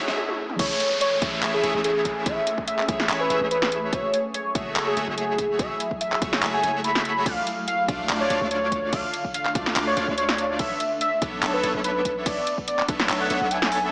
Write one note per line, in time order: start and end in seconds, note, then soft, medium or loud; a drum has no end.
0.00 0.56 F#2 medium
0.00 0.55 E3 medium
0.00 0.56 A3 medium
0.00 0.61 A3 medium
0.00 0.61 C#4 medium
0.00 0.61 E4 medium
0.00 0.55 G#4 medium
0.00 0.61 G#4 medium
0.00 riser medium
0.08 0.18 A3 medium
0.08 0.18 F#4 medium
0.08 0.18 G#4 medium
0.08 0.18 C#5 medium
0.08 0.18 E5 medium
0.08 snare medium
0.18 high tom medium
0.29 high tom medium
0.49 mid tom medium
0.59 0.72 A1 loud
0.59 3.89 A3 medium
0.59 0.74 A3 medium
0.59 3.89 C#4 loud
0.59 0.74 E4 medium
0.59 3.89 G#4 medium
0.59 0.74 G#4 medium
0.59 0.91 C#5 loud
0.59 0.74 C#5 medium
0.59 0.74 E5 medium
0.59 kick loud
0.59 closed hi-hat medium
0.59 crash loud
0.59 downlifter medium
0.80 closed hi-hat medium
1.01 1.17 C#5 medium
1.01 closed hi-hat medium
1.22 1.41 A1 loud
1.22 1.40 A3 medium
1.22 1.40 E4 medium
1.22 1.40 G#4 medium
1.22 1.40 C#5 medium
1.22 1.40 E5 medium
1.22 kick loud
1.22 closed hi-hat medium
1.42 1.61 A1 loud
1.42 1.60 A3 loud
1.42 1.60 E4 medium
1.42 1.60 G#4 medium
1.42 1.60 C#5 medium
1.42 1.60 E5 loud
1.42 clap loud
1.42 closed hi-hat medium
1.54 1.77 G#4 loud
1.63 1.72 A1 loud
1.63 1.72 A3 loud
1.63 1.72 E4 medium
1.63 1.72 G#4 medium
1.63 1.72 C#5 medium
1.63 1.72 E5 loud
1.63 closed hi-hat medium
1.74 2.24 A1 loud
1.74 2.24 A3 medium
1.74 2.24 E4 medium
1.74 2.24 G#4 medium
1.74 2.24 C#5 medium
1.74 2.24 E5 medium
1.84 2.27 G#4 loud
1.84 closed hi-hat medium
2.05 kick medium
2.05 closed hi-hat medium
2.26 2.38 A1 loud
2.26 2.40 A3 medium
2.26 2.40 E4 medium
2.26 2.40 G#4 medium
2.26 2.40 C#5 medium
2.26 2.40 E5 medium
2.26 2.57 E5 loud
2.26 kick loud
2.26 closed hi-hat medium
2.47 closed hi-hat medium
2.58 kick medium
2.68 2.83 E5 loud
2.68 closed hi-hat medium
2.79 clap soft
2.88 3.07 A1 loud
2.88 3.07 A3 medium
2.88 3.07 E4 medium
2.88 3.07 G#4 medium
2.88 3.07 C#5 medium
2.88 3.07 E5 medium
2.88 kick loud
2.88 closed hi-hat medium
3.00 snare medium
3.09 3.28 A1 loud
3.09 3.27 A3 medium
3.09 3.27 E4 medium
3.09 3.27 G#4 loud
3.09 3.27 C#5 medium
3.09 3.27 E5 loud
3.09 clap loud
3.09 closed hi-hat medium
3.20 3.43 B4 loud
3.30 3.39 A1 loud
3.30 3.38 A3 loud
3.30 3.38 E4 medium
3.30 3.38 G#4 medium
3.30 3.38 C#5 medium
3.30 3.38 E5 loud
3.30 closed hi-hat medium
3.41 3.91 A1 medium
3.41 3.90 A3 medium
3.41 3.90 E4 medium
3.41 3.90 G#4 medium
3.41 3.90 C#5 medium
3.41 3.90 E5 medium
3.51 3.94 B4 medium
3.51 closed hi-hat medium
3.62 snare medium
3.72 closed hi-hat medium
3.92 4.05 F#1 loud
3.92 7.23 F#3 medium
3.92 4.07 A3 medium
3.92 10.55 A3 loud
3.92 7.23 E4 medium
3.92 4.07 F#4 medium
3.92 4.07 G#4 medium
3.92 7.23 G#4 medium
3.92 4.07 C#5 medium
3.92 4.24 C#5 loud
3.92 4.07 E5 medium
3.92 kick loud
3.92 closed hi-hat medium
4.14 closed hi-hat medium
4.34 4.50 C#5 medium
4.34 closed hi-hat medium
4.55 4.74 F#1 loud
4.55 4.74 A3 medium
4.55 4.74 F#4 medium
4.55 4.74 G#4 medium
4.55 4.74 C#5 medium
4.55 4.74 E5 medium
4.55 kick loud
4.55 closed hi-hat medium
4.76 4.95 F#1 loud
4.76 4.94 A3 loud
4.76 4.94 F#4 medium
4.76 4.94 G#4 loud
4.76 4.94 C#5 medium
4.76 4.94 E5 loud
4.76 clap loud
4.76 closed hi-hat medium
4.87 5.10 G#4 loud
4.97 5.06 F#1 loud
4.97 5.05 A3 loud
4.97 5.05 F#4 medium
4.97 5.05 G#4 medium
4.97 5.05 C#5 medium
4.97 5.05 E5 loud
4.97 closed hi-hat medium
5.08 5.57 F#1 medium
5.08 5.57 A3 medium
5.08 5.57 F#4 medium
5.08 5.57 G#4 medium
5.08 5.57 C#5 medium
5.08 5.57 E5 medium
5.18 5.61 G#4 loud
5.18 closed hi-hat medium
5.38 kick medium
5.38 closed hi-hat medium
5.59 5.72 F#1 loud
5.59 5.74 A3 medium
5.59 5.74 F#4 medium
5.59 5.74 G#4 medium
5.59 5.74 C#5 medium
5.59 5.74 E5 medium
5.59 5.91 E5 loud
5.59 kick loud
5.59 closed hi-hat medium
5.80 closed hi-hat medium
5.91 kick medium
6.01 6.17 E5 medium
6.01 closed hi-hat medium
6.12 clap soft
6.22 6.41 F#1 medium
6.22 6.40 A3 medium
6.22 6.40 F#4 medium
6.22 6.40 G#4 medium
6.22 6.40 C#5 medium
6.22 6.40 E5 loud
6.22 kick loud
6.22 closed hi-hat medium
6.33 snare medium
6.42 6.61 F#1 loud
6.42 6.61 A3 loud
6.42 6.61 F#4 medium
6.42 6.61 G#4 medium
6.42 6.61 C#5 medium
6.42 6.60 E5 loud
6.42 clap loud
6.42 closed hi-hat medium
6.54 6.77 G#5 loud
6.63 7.24 F#1 loud
6.63 7.24 A3 loud
6.63 7.24 F#4 medium
6.63 7.24 G#4 medium
6.63 7.24 C#5 medium
6.63 7.24 E5 loud
6.63 closed hi-hat medium
6.84 7.28 B5 medium
6.84 closed hi-hat medium
6.95 snare medium
7.05 closed hi-hat medium
7.26 7.38 D2 loud
7.26 10.56 D3 medium
7.26 7.40 A3 medium
7.26 13.89 D4 medium
7.26 7.40 D4 medium
7.26 10.56 F4 medium
7.26 7.40 F4 medium
7.26 7.40 D5 medium
7.26 7.40 F5 medium
7.26 7.57 F5 loud
7.26 kick loud
7.26 closed hi-hat medium
7.26 crash soft
7.47 closed hi-hat medium
7.68 7.83 F5 medium
7.68 closed hi-hat medium
7.88 8.07 D2 loud
7.88 8.07 A3 medium
7.88 8.07 D4 medium
7.88 8.07 F4 medium
7.88 8.07 D5 medium
7.88 8.07 F5 loud
7.88 kick loud
7.88 closed hi-hat medium
8.09 8.28 D2 medium
8.09 8.27 A3 loud
8.09 8.27 D4 medium
8.09 8.27 F4 medium
8.09 8.27 D5 medium
8.09 8.27 F5 loud
8.09 clap loud
8.09 closed hi-hat medium
8.09 crash soft
8.20 8.43 C#5 loud
8.30 8.39 D2 loud
8.30 8.38 A3 loud
8.30 8.39 D4 loud
8.30 8.39 F4 medium
8.30 8.39 D5 medium
8.30 8.38 F5 loud
8.30 closed hi-hat medium
8.41 8.91 D2 medium
8.41 8.90 A3 medium
8.41 8.90 D4 medium
8.41 8.90 F4 medium
8.41 8.90 D5 medium
8.41 8.90 F5 medium
8.51 8.94 C#5 loud
8.51 closed hi-hat medium
8.72 kick medium
8.72 closed hi-hat medium
8.93 9.05 D2 loud
8.93 9.07 A3 medium
8.93 9.07 D4 medium
8.93 9.07 F4 medium
8.93 9.07 D5 medium
8.93 9.24 F5 loud
8.93 9.07 F5 medium
8.93 kick loud
8.93 closed hi-hat medium
8.93 crash soft
9.13 closed hi-hat medium
9.25 kick medium
9.34 9.50 F5 medium
9.34 closed hi-hat medium
9.45 clap soft
9.55 9.74 D2 medium
9.55 9.74 A3 medium
9.55 9.74 D4 medium
9.55 9.74 F4 medium
9.55 9.74 D5 medium
9.55 9.74 F5 loud
9.55 kick loud
9.55 closed hi-hat medium
9.66 snare medium
9.76 9.95 D2 loud
9.76 9.94 A3 loud
9.76 9.94 D4 medium
9.76 9.94 F4 medium
9.76 9.94 D5 medium
9.76 9.94 F5 loud
9.76 clap loud
9.76 closed hi-hat medium
9.76 crash soft
9.87 10.10 C#5 loud
9.97 10.06 D2 loud
9.97 10.05 A3 loud
9.97 10.05 D4 medium
9.97 10.05 F4 medium
9.97 10.05 D5 medium
9.97 10.05 F5 loud
9.97 closed hi-hat medium
10.08 10.57 D2 medium
10.08 10.57 A3 medium
10.08 10.57 D4 medium
10.08 10.57 F4 medium
10.08 10.57 D5 medium
10.08 10.57 F5 medium
10.18 10.49 C#5 medium
10.18 closed hi-hat medium
10.29 snare medium
10.38 closed hi-hat medium
10.59 10.72 B1 loud
10.59 13.92 A3 medium
10.59 13.89 B3 medium
10.59 10.74 B3 medium
10.59 10.74 D4 medium
10.59 10.74 A4 medium
10.59 10.74 C#5 medium
10.59 10.74 E5 medium
10.59 10.91 E5 loud
10.59 kick loud
10.59 closed hi-hat medium
10.59 crash soft
10.80 closed hi-hat medium
11.01 11.17 E5 medium
11.01 closed hi-hat medium
11.22 11.41 B1 loud
11.22 11.40 B3 medium
11.22 11.40 D4 medium
11.22 11.40 A4 medium
11.22 11.40 C#5 medium
11.22 11.40 E5 loud
11.22 kick loud
11.22 closed hi-hat medium
11.42 11.61 B1 loud
11.42 11.60 B3 loud
11.42 11.60 D4 medium
11.42 11.60 A4 medium
11.42 11.60 C#5 medium
11.42 11.60 E5 loud
11.42 clap loud
11.42 closed hi-hat medium
11.42 crash soft
11.54 11.77 B4 loud
11.63 11.72 B1 loud
11.63 11.72 B3 loud
11.63 11.72 D4 loud
11.63 11.72 A4 medium
11.63 11.72 C#5 medium
11.63 11.72 E5 loud
11.63 closed hi-hat medium
11.74 12.24 B1 medium
11.74 12.24 B3 medium
11.74 12.24 D4 medium
11.74 12.24 A4 medium
11.74 12.24 C#5 medium
11.74 12.24 E5 medium
11.84 12.16 B4 loud
11.84 closed hi-hat medium
12.05 kick medium
12.05 closed hi-hat medium
12.26 12.38 B1 loud
12.26 12.40 B3 medium
12.26 12.40 D4 medium
12.26 12.40 A4 medium
12.26 12.40 C#5 medium
12.26 12.57 D5 loud
12.26 12.40 E5 medium
12.26 kick loud
12.26 closed hi-hat medium
12.26 crash soft
12.47 closed hi-hat medium
12.58 kick medium
12.68 12.83 D5 medium
12.68 closed hi-hat medium
12.79 clap soft
12.88 13.07 B1 loud
12.88 13.07 B3 medium
12.88 13.07 D4 medium
12.88 13.07 A4 medium
12.88 13.07 C#5 medium
12.88 13.07 E5 loud
12.88 kick loud
12.88 closed hi-hat medium
13.00 snare medium
13.09 13.28 B1 loud
13.09 13.27 B3 loud
13.09 13.27 D4 medium
13.09 13.27 A4 medium
13.09 13.27 C#5 medium
13.09 13.27 E5 loud
13.09 clap loud
13.09 closed hi-hat medium
13.09 crash soft
13.20 13.53 F#5 loud
13.30 13.39 B1 loud
13.30 13.38 B3 loud
13.30 13.38 D4 medium
13.30 13.38 A4 medium
13.30 13.38 C#5 medium
13.30 13.38 E5 loud
13.30 closed hi-hat medium
13.41 13.91 B1 loud
13.41 13.90 B3 medium
13.41 13.90 D4 medium
13.41 13.90 A4 medium
13.41 13.90 C#5 medium
13.41 13.90 E5 medium
13.51 13.82 G#5 loud
13.51 closed hi-hat medium
13.62 snare medium
13.72 open hi-hat medium